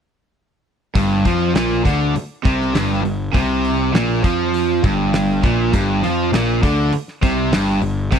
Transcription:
0.95 G1 G2, kick, open hi-hat
1.25 F2 F3, kick, open hi-hat
1.55 A#1 A#2, snare, open hi-hat
1.85 D2 D3, kick, open hi-hat
2.16 muted picked electric bass stroke, muted overdriven electric guitar stroke, open hi-hat
2.45 C2 C3, kick, open hi-hat
2.61 snare
2.74 G1 G2, snare, open hi-hat
3.04 G1 G2, open hi-hat
3.34 C2 C3, kick, open hi-hat
3.65 open hi-hat
3.94 A#1 A#2, snare, open hi-hat
4.24 F2 F3, kick, open hi-hat
4.54 open hi-hat
4.83 G1 G2, kick, open hi-hat
5.13 snare, open hi-hat
5.43 A#1 A#2, kick, open hi-hat
5.72 G1 G2, kick, open hi-hat
6.02 F2 F3, open hi-hat
6.33 A#1 A#2, snare, open hi-hat
6.62 D2 D3, kick, open hi-hat
6.93 muted picked electric bass stroke, muted overdriven electric guitar stroke, open hi-hat
7.08 snare
7.22 C2 C3, kick, open hi-hat
7.52 G1 G2, snare, open hi-hat
7.82 G1 G2, open hi-hat
8.12 C2 C3, kick, open hi-hat

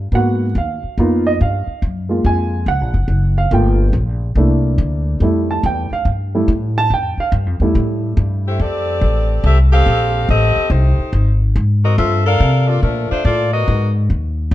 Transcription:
Already playing: G2
0.12 G#2 A#3 B3 F#4 F#5
0.55 D#2 F5
0.83 muted upright bass stroke
0.98 F2 A#3 B3 D#4 F4
1.27 D#5
1.41 G2 F5
1.67 muted upright bass stroke
1.82 F#2
2.09 G#3 A#3 F4
2.24 F2 G#5
2.66 C#2 F#5
2.81 A#1
2.94 F#1
3.08 F#1
3.38 F5
3.51 G1 A3 A#3 F4 G5
3.93 A#1
4.35 C2 A3 A#3 D4 E4
4.78 D2
5.20 F2 G3 A3 E4
5.51 A5
5.63 E2 G5
5.91 F5, muted upright bass stroke
6.05 G2
6.35 G3 A3 E4
6.48 A2
6.78 A5
6.90 F2 G5
7.17 F5, muted upright bass stroke
7.32 G2
7.46 F2
7.60 E2 G3 A3 E4
7.75 A2
8.17 G2
8.48 A3 E4 G4 C5
8.59 F2 C4 G4 A4 D5
9.01 A1
9.44 C2 C4 G4 A4 E5
9.73 C4 G4 A4 F5
9.86 A#1
10.29 A1 C4 G4 A4 D#5
10.56 muted upright bass stroke
10.70 C2 A3 D#4 G4 C5
10.98 muted upright bass stroke
11.13 G#1
11.56 G#2
11.84 C4 F#4 A#4 D#5
11.98 G2 C4 F4 A4 E5
12.26 D4 A4 A#4 F5
12.40 C3
12.68 A#3 F4 A4 D5
12.83 A#2 F3 A3 D4 A#4
13.11 A3 D4 F4 C5, muted upright bass stroke
13.25 A2 A#3 F4 A4 D5
13.53 B3 F#4 A#4 D#5
13.68 G#2
14.10 D#2
14.51 C#2

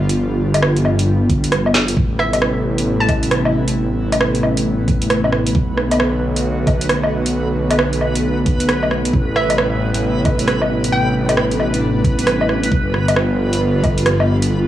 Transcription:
Already playing: G1 D3 F3 G3 B3 F4
0.09 closed hi-hat
0.54 closed hi-hat, low woodblock
0.63 cross-stick
0.76 closed hi-hat
0.85 low woodblock
0.99 closed hi-hat
1.30 kick, closed hi-hat
1.44 closed hi-hat
1.52 cross-stick, closed hi-hat
1.66 low woodblock
1.74 snare
1.88 closed hi-hat
1.96 A1 C3 A3 B3 E4 B4, kick
2.19 E5, cross-stick
2.33 closed hi-hat, low woodblock
2.42 cross-stick
2.78 closed hi-hat
3.00 A5
3.09 kick, closed hi-hat, low woodblock
3.23 closed hi-hat
3.31 cross-stick, closed hi-hat
3.45 low woodblock
3.68 closed hi-hat
4.12 closed hi-hat, low woodblock
4.21 cross-stick
4.35 closed hi-hat
4.43 low woodblock
4.57 closed hi-hat
4.88 kick, closed hi-hat
5.02 closed hi-hat
5.10 cross-stick, closed hi-hat
5.24 low woodblock
5.32 cross-stick
5.47 closed hi-hat
5.54 B1 D3 F#3 F#4, kick
5.77 cross-stick
5.91 closed hi-hat, low woodblock
6.00 cross-stick
6.36 closed hi-hat
6.67 kick, closed hi-hat, low woodblock
6.81 closed hi-hat
6.89 cross-stick, closed hi-hat
7.03 low woodblock
7.26 closed hi-hat
7.71 closed hi-hat, low woodblock
7.79 cross-stick
7.93 closed hi-hat
8.01 low woodblock
8.15 closed hi-hat
8.46 kick, closed hi-hat
8.60 closed hi-hat
8.69 cross-stick, closed hi-hat
8.83 low woodblock
8.91 cross-stick
9.05 closed hi-hat
9.13 A1 C3 G3 B3 E4, kick
9.36 E5, cross-stick
9.50 closed hi-hat, low woodblock
9.58 cross-stick
9.94 closed hi-hat
10.25 kick, closed hi-hat, low woodblock
10.39 closed hi-hat
10.48 cross-stick, closed hi-hat
10.62 low woodblock
10.84 closed hi-hat
10.92 D4 G5
11.29 closed hi-hat, low woodblock
11.37 cross-stick
11.51 closed hi-hat
11.60 low woodblock
11.74 closed hi-hat
12.04 kick, closed hi-hat
12.19 closed hi-hat
12.27 cross-stick, closed hi-hat
12.41 low woodblock
12.49 cross-stick
12.63 closed hi-hat
12.71 G1 D3 F3 F4, kick
12.94 cross-stick
13.08 closed hi-hat, low woodblock
13.16 cross-stick
13.53 closed hi-hat
13.84 kick, closed hi-hat, low woodblock
13.98 closed hi-hat
14.06 cross-stick, closed hi-hat
14.20 low woodblock
14.42 closed hi-hat

